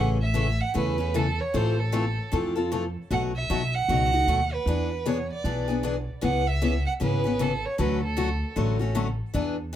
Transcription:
Already playing: A1 C#3 E3 A3 C#4 G#4
0.22 E5
0.34 C#3 E3 A3 C#4 G#4
0.61 F#5
0.74 E2 C#3 E3 A3 C#4 G#4 B4
0.98 A3 C#4 G#4
1.14 C#3 E3 A3 C#4 G#4 A4
1.41 C#5
1.54 A1 E3 A3 C4 F4 A4 C5
1.79 A4
1.92 E3 A3 C4 F4 A4
2.32 F2 E3 A3 C4 F4 A4
2.56 C4 F4 A4
2.72 E3 A3 C4 F4 A4
3.10 B1 B2 F#3 A3 D#4 F#4 F#5
3.36 E5
3.50 B1 B2 F#3 A3 D#4 F#4
3.75 F#5
3.88 C#2 B2 F#3 A3 D#4 F#4
4.12 A3 D#4 F#4
4.27 D#2 B2 F#3 A3 D#4 F#4
4.53 B4
4.66 E2 E3 B3 D4 G#4
5.06 E3 B3 D4 G#4 C#5
5.32 D5
5.44 B1 E3 B3 D4 G#4
5.68 B3 D4 G#4
5.83 E3 B3 D4 G#4
6.21 C#2 C#3 E3 B3 C#4 G#4 F#5
6.46 E5
6.62 C#3 E3 B3 C#4 G#4
6.86 F#5
7.00 G#1 C#3 E3 B3 C#4 G#4 B4
7.24 B3 C#4 G#4
7.39 C#3 E3 B3 C#4 G#4 A4
7.66 C#5
7.78 D2 D3 F#3 A3 C#4 F#4 B4
8.04 A4
8.17 D3 F#3 A3 C#4 F#4
8.56 A1 D3 F#3 A3 C#4 F#4
8.79 A3 C#4 F#4
8.95 D3 F#3 A3 C#4 F#4
9.34 E2 E3 B3 D4 G#4

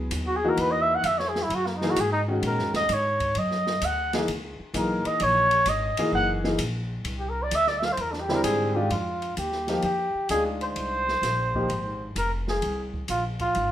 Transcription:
Already playing: F#3 B3 E4 G#4
0.11 D#2, hi-hat pedal, ride
0.27 F#4
0.36 G#4
0.44 E3 A#3 D#4 F#4
0.49 A#4
0.57 E2 B4, ride
0.72 D#5
0.82 E5
0.95 F#5
1.04 F2 E5, hi-hat pedal, ride
1.19 C#5, snare
1.29 G#4
1.35 snare
1.43 E4
1.50 F#2, ride
1.55 F#4
1.66 A#3, snare
1.76 D#4
1.81 E3 A#3 D#4 G#4, snare
1.90 F#4
1.96 G#2, hi-hat pedal, ride
2.01 G#4
2.12 D#4
2.28 D#3 G#3 C#4 F#4
2.42 A#2, ride
2.47 A#4
2.58 F#2, snare
2.73 D#2 D#5, snare, ride
2.89 G#2, hi-hat pedal, ride
2.93 C#5
3.20 kick, ride
3.35 F#2 D#5, ride
3.51 snare
3.67 snare
3.81 D2 F#5, hi-hat pedal, ride
4.13 E3 A#3 D#4 G#4, snare, ride
4.28 C#2, ride
4.59 muted upright bass stroke
4.74 B1 E3 A#3 D#4 G#4 A#4, hi-hat pedal, ride
5.05 D#5, muted upright bass stroke, ride
5.20 A#1 C#5, ride
5.51 ride
5.66 G#1 D#5, hi-hat pedal, ride
5.97 E3 A#3 D#4 G#4, muted upright bass stroke, ride
6.12 F#1 F#5
6.44 E3 A#3 D#4 G#4, snare
6.58 A#1, hi-hat pedal, ride
7.05 C2, ride
7.19 G4
7.30 A#4
7.43 D5
7.51 D2, hi-hat pedal, ride
7.56 E5
7.67 D5, snare
7.78 E5
7.82 F5, snare
7.93 C5
7.97 E2 A#4, ride
8.12 D4, snare
8.20 G4
8.29 D3 G3 C4 E4, snare
8.34 A#4
8.44 G#2 G#4, hi-hat pedal, ride
8.75 D#3 G#3 D4 F4 G4
8.90 F2 F4, ride
9.22 ride
9.37 D#2 G4, hi-hat pedal, ride
9.52 snare
9.67 F3 A#3 D#4 G4, snare, ride
9.82 F2 G4, ride
10.15 muted upright bass stroke
10.29 D2 G#3 D4 D#4 F4 G#4, hi-hat pedal, ride
10.61 C5, ride
10.76 C2, ride
11.08 snare
11.22 A#1, snare, hi-hat pedal, ride
11.55 F3 A#3 D#4 G4, kick
11.69 G#1, ride
12.15 F1 A#4, hi-hat pedal, ride
12.48 G#4, snare
12.62 C2, ride
12.94 kick
13.08 A#1 F4, hi-hat pedal, ride
13.39 F4, kick, ride
13.55 G#1, ride

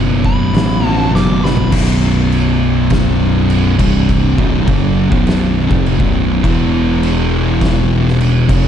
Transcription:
Already playing: F#1 B1 F#2 B2
0.25 B5, kick
0.53 A1, snare, crash
0.83 B1 F#2 B2
0.88 A5
1.13 F#1 B1 F#2 B2 D6, snare
1.27 mid tom
1.44 B5, snare
1.57 floor tom
1.72 B0 B1 F#2 B2, kick, crash
2.32 crash
2.90 kick, snare, crash
3.50 crash
3.79 C1 C2 G2 C3, kick, crash
4.09 kick, crash
4.38 B0 B1 F#2 B2, kick
4.67 F#1 F#2 C#3 F#3, kick, crash
5.11 B0 B1 F#2 B2, kick
5.27 snare, crash
5.69 F1 F2 C3 F3, kick
5.86 crash
5.98 B0 B1 F#2 B2, kick
6.43 E1 E2 B2 E3, kick, crash
7.03 crash
7.61 kick, snare, crash
8.08 snare
8.21 crash
8.48 F1 F2 C3 F3, kick, crash

